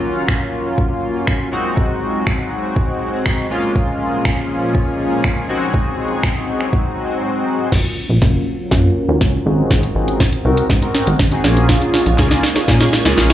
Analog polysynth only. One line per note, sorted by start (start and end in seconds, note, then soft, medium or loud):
0.00 1.49 F#3 medium
0.00 1.49 A#3 medium
0.00 1.49 C#4 medium
0.00 1.49 F4 medium
1.52 3.47 G#3 medium
1.52 3.47 C4 medium
1.52 3.47 D#4 medium
1.52 3.47 F#4 medium
3.50 5.45 G#3 medium
3.50 5.45 A#3 medium
3.50 5.45 C#4 medium
3.50 5.45 F4 medium
5.49 7.68 G#3 medium
5.49 7.68 C4 medium
5.49 7.68 D#4 medium
5.49 7.69 F#4 medium
7.72 7.97 A#3 medium
7.72 7.97 C#4 medium
7.72 7.97 F4 medium
7.72 7.97 F#4 medium
8.22 8.46 A#3 medium
8.22 8.46 C#4 medium
8.22 8.46 F4 medium
8.22 8.47 F#4 loud
8.71 8.90 A#3 medium
8.71 8.90 C#4 medium
8.71 8.90 F4 medium
8.71 8.90 F#4 loud
9.08 9.33 A#3 medium
9.08 9.33 C#4 medium
9.08 9.33 F4 medium
9.08 9.33 F#4 medium
9.45 9.85 C4 medium
9.45 9.85 D#4 medium
9.45 9.85 F#4 medium
9.45 9.86 G#4 medium
9.95 10.20 C4 medium
9.95 10.20 D#4 medium
9.95 10.20 F#4 medium
9.95 10.20 G#4 medium
10.45 10.63 C4 medium
10.45 10.63 D#4 medium
10.45 10.63 F#4 medium
10.45 10.64 A#4 medium
10.82 11.07 C4 medium
10.82 11.07 D#4 medium
10.82 11.07 F#4 medium
10.82 11.07 A#4 medium
11.32 11.44 C4 medium
11.32 11.44 D#4 medium
11.32 11.44 F#4 medium
11.32 11.43 G#4 loud
11.44 12.03 A#3 medium
11.44 12.04 C#4 medium
11.44 12.04 F4 medium
11.44 12.04 G#4 loud
12.18 12.43 A#3 loud
12.18 12.43 C#4 medium
12.18 12.43 F4 medium
12.18 12.43 G#4 loud
12.68 12.86 A#3 medium
12.68 12.87 C#4 medium
12.68 12.87 F4 medium
12.68 12.87 G#4 loud
13.05 13.30 A#3 medium
13.05 13.30 C#4 medium
13.05 13.30 F4 medium
13.05 13.30 G#4 loud